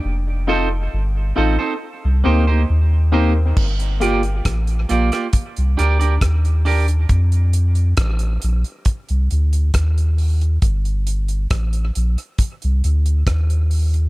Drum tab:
CC |----------------|x---------------|----------------|----------------|
HH |----------------|-xxxxxxxxxxxxxox|xxxxxxxxxxxxxxox|xxxxxxxxxxxxxxox|
SD |----------------|----r--r----r---|----r-------r---|----r-------r---|
BD |----------------|o---o---o---o---|o---o---o---o---|o---o---o---o---|